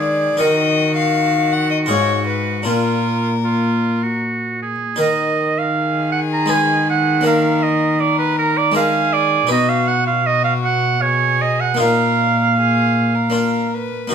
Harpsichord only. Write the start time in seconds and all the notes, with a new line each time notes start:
Already playing: D#3 G#3 D4 A#4
0.37 D#3 D#4 A#4
1.86 G#2 F4 G#4
2.63 A#2 D4 F4
4.96 D#3 D#4 A#4
6.46 G#3 D#4 B4
7.21 A#3 D4 A#4
8.72 G#3 D4 A#4
9.47 B2 D#4 B4
11.75 A#3 D#4 F4
11.79 A#2
13.30 A#3 D4 F4
14.08 A#3 D#4 F#4